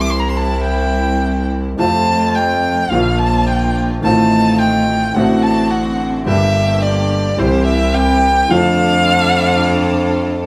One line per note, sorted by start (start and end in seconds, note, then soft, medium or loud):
0.00 1.67 C2 medium
0.00 1.68 C2 medium
0.00 1.67 C3 medium
0.00 1.67 E3 medium
0.00 1.67 G3 medium
0.00 1.67 C4 medium
0.00 1.67 E4 medium
0.00 1.68 E4 medium
0.00 0.11 D6 medium
0.10 0.21 C6 medium
0.20 0.30 A#5 medium
0.28 0.38 C6 medium
0.37 0.63 A5 medium
0.64 1.45 G5 medium
1.77 2.85 F2 medium
1.77 2.85 C3 medium
1.77 2.86 F3 medium
1.77 2.85 A3 medium
1.77 2.86 A3 medium
1.77 2.86 C4 medium
1.77 2.86 F4 medium
1.77 2.87 F4 medium
1.77 2.36 A5 loud
2.35 2.92 G5 medium
2.90 3.97 A#1 medium
2.90 3.98 A#1 medium
2.90 3.98 A#2 medium
2.90 3.97 D3 medium
2.90 3.98 F3 medium
2.90 3.98 A#3 medium
2.90 3.99 A#3 medium
2.90 3.98 D4 medium
2.90 3.98 F4 medium
2.90 3.20 F5 medium
2.95 4.00 F4 medium
3.19 3.49 A5 medium
3.47 3.75 G5 medium
4.02 5.10 A1 medium
4.02 5.10 A2 medium
4.02 5.09 D#3 medium
4.02 5.10 A3 medium
4.02 5.11 C4 medium
4.02 5.10 D#4 medium
4.02 5.10 F4 medium
4.02 4.60 A5 loud
4.06 5.11 F4 medium
4.59 5.16 G5 medium
5.14 6.22 A1 medium
5.14 6.22 A2 medium
5.14 6.21 D3 medium
5.14 6.21 A3 medium
5.14 6.21 C4 medium
5.14 6.22 C4 medium
5.14 6.21 D4 medium
5.14 6.21 F#4 medium
5.14 6.23 F#4 medium
5.14 5.44 F#5 medium
5.42 5.72 A5 medium
5.71 5.99 F#5 medium
6.25 7.33 G1 medium
6.25 7.33 G2 medium
6.25 7.32 D3 medium
6.25 7.32 G3 medium
6.25 7.33 A#3 medium
6.25 7.33 D4 medium
6.25 7.33 G4 medium
6.25 7.34 G4 medium
6.25 6.84 E5 medium
6.82 7.40 D5 medium
7.37 8.44 C2 medium
7.37 8.45 C2 medium
7.37 8.44 C3 medium
7.37 8.43 E3 medium
7.37 8.44 G3 medium
7.37 8.44 C4 medium
7.37 8.45 C4 medium
7.37 8.44 E4 medium
7.37 8.44 G4 medium
7.37 8.45 G4 medium
7.37 7.66 C5 medium
7.66 7.96 E5 medium
7.94 8.52 G5 loud
8.48 10.46 F2 medium
8.48 10.46 D3 medium
8.48 10.46 F3 medium
8.48 10.46 A3 medium
8.48 10.46 C4 medium
8.48 10.46 D4 medium
8.48 10.46 F4 medium
8.48 10.46 A4 medium
8.48 10.19 F5 loud
8.52 10.46 F4 medium